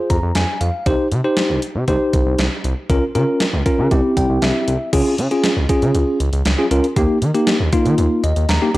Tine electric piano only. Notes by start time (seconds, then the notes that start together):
Already playing: F4 G#4 C5
0.10 A#5
0.35 G#5
0.61 F5
0.86 D#4 G4 C5
1.25 D#4 G4 C5
1.88 D#4 G4 C5
2.90 C#4 F4 A#4
3.15 C#4 F4 A#4
3.66 C#4 F4 A#4
3.91 C4 E4 G4
4.17 G5
4.42 E5
4.93 C#4 F4 G#4
5.31 C#4 F4 G#4
5.69 C#4 F4 G#4
6.58 C#4 F4 G#4
6.71 C#4 F4 A#4
6.97 A#3 D#4 G4
7.35 A#3 D#4 G4
7.73 A#3 D#4 F4
8.24 D#5
8.49 A#5
8.62 A#3 D#4 G4